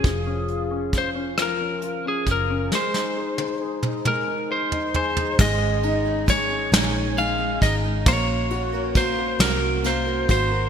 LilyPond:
<<
  \new Staff \with { instrumentName = "Lead electric guitar" } { \time 6/8 \key aes \mixolydian \tempo 4. = 45 aes'4 c''8 bes'8. aes'16 bes'8 | c''4. bes'8 c''8 c''8 | ees''4 des''4 f''8 ees''8 | des''4 c''8 bes'8 c''8 c''8 | }
  \new Staff \with { instrumentName = "Grand piano" } { \time 6/8 \key aes \mixolydian << { r2. | r2 c''16 ees''16 aes''8 | r2. | r2. | } \\ { f16 des'16 f'16 des'16 f'16 des'16 f16 des'16 f'16 des'16 f'16 des'16 | aes16 ees'16 aes'16 ees'16 aes'16 ees'16 aes16 ees'16 aes'16 ees'16 aes'16 ees'16 | aes8 ees'8 aes8 ees'8 aes8 ees'8 | bes8 ges'8 bes8 ges'8 bes8 ges'8 | } >> }
  \new Staff \with { instrumentName = "Steel-string acoustic guitar" } { \time 6/8 \key aes \mixolydian r2. | r2. | <aes, ees aes des' ees' aes'>8. <aes des' ees' aes'>16 <aes des' ees' aes'>16 <aes des' ees' aes'>16 <aes, ees aes des' ees' aes'>8. <aes des' ees' aes'>16 <aes des' ees' aes'>16 <aes des' ees' aes'>16 | <bes des' ges' bes'>8. <des' ges' bes'>16 <bes des' ges' bes'>16 <des' ges' bes'>16 <bes des' ges' bes'>8. <des' ges' bes'>16 <bes des' ges' bes'>16 <des' ges' bes'>16 | }
  \new Staff \with { instrumentName = "Fingered electric bass" } { \clef bass \time 6/8 \key aes \mixolydian f,,2~ f,,8 ges,,8 | r2. | aes,,4. bes,,4 aes,,8 | bes,,4. c,4 aes,,8 | }
  \new DrumStaff \with { instrumentName = "Drums" } \drummode { \time 6/8 <hh bd>8 hh8 <hh bd>8 <hh ss>8 hh8 <hh bd>8 | sn16 sn8 tommh8 toml16 toml8. tomfh16 tomfh16 tomfh16 | <cymc bd>8 cymr8 <bd cymr>8 <cymr sn>8 cymr8 <bd cymr>8 | <bd cymr>8 cymr8 <bd cymr>8 <cymr sn>8 <cymr sn>8 <bd cymr>8 | }
>>